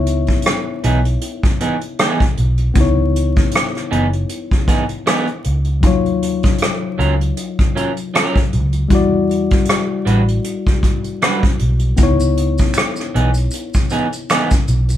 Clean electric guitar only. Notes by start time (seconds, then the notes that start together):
0.84 E3 B3 D#4 G#4
1.61 E3 B3 D#4 G#4
1.99 E3 B3 D#4 G#4
3.91 E3 B3 D#4 G#4
4.68 E3 B3 D#4 G#4
5.06 E3 B3 D#4 G#4
6.98 F#3 C#4 F4 A#4
7.75 F#3 C#4 F4 A#4
8.14 F#3 C#4 F4 A#4
10.05 G3 D4 F#4 B4
11.22 G3 D4 F#4 B4
13.14 E3 B3 D#4 G#4
13.91 E3 B3 D#4 G#4
14.30 E3 B3 D#4 G#4